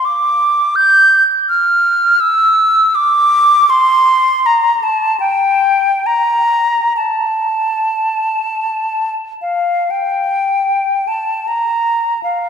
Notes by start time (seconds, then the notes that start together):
0.05 D6
0.76 G6
1.49 F6
2.20 E6
2.95 D6
3.70 C6
4.46 A#5
4.83 A5
5.20 G5
6.06 A#5
6.97 A5
9.42 F5
9.90 G5
11.08 A5
11.48 A#5
12.23 F5